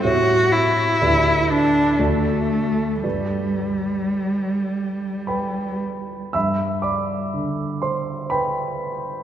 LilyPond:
<<
  \new Staff \with { instrumentName = "Grand piano" } { \time 3/4 \key g \major \tempo 4 = 61 << { r2. | r2 <b' g'' b''>4 | <e'' b'' e'''>8 <d'' b'' d'''>4 <c'' c'''>8 <b' g'' b''>4 | } \\ { <a, g' cis'' e''>4 <d, g' b' d''>4 <d, fis' a' d''>4 | <g, g' b' d''>2. | g,4 d2 | } >> }
  \new Staff \with { instrumentName = "Cello" } { \time 3/4 \key g \major fis'8 e'4 d'8 a4 | g2~ g8 r8 | r2. | }
>>